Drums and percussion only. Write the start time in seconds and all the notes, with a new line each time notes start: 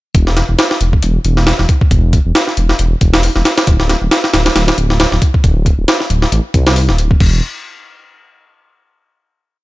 0.15 kick, closed hi-hat
0.27 snare
0.37 snare, closed hi-hat
0.59 snare, closed hi-hat
0.71 snare
0.81 closed hi-hat
0.93 kick
1.03 closed hi-hat
1.25 closed hi-hat
1.37 snare
1.47 snare, closed hi-hat
1.59 snare
1.69 kick, closed hi-hat
1.81 kick
1.91 kick, closed hi-hat
2.13 kick, closed hi-hat
2.35 snare, closed hi-hat
2.48 snare
2.57 closed hi-hat
2.69 snare
2.79 closed hi-hat
3.01 kick, closed hi-hat
3.14 snare
3.23 open hi-hat
3.36 snare
3.45 snare, closed hi-hat
3.58 snare, closed hi-hat
3.67 kick, closed hi-hat
3.80 snare
3.89 snare, closed hi-hat
4.11 snare, closed hi-hat
4.24 snare
4.34 snare, closed hi-hat
4.46 snare, closed hi-hat
4.56 snare, closed hi-hat
4.68 snare, closed hi-hat
4.78 closed hi-hat
4.90 snare
5.00 snare, closed hi-hat
5.12 snare
5.22 kick, closed hi-hat
5.34 kick
5.44 kick, closed hi-hat
5.66 kick, closed hi-hat
5.88 snare, closed hi-hat
6.00 snare
6.10 closed hi-hat
6.22 snare
6.32 closed hi-hat
6.54 kick, closed hi-hat
6.67 snare
6.76 open hi-hat
6.89 snare
6.98 closed hi-hat
7.11 kick
7.20 kick, crash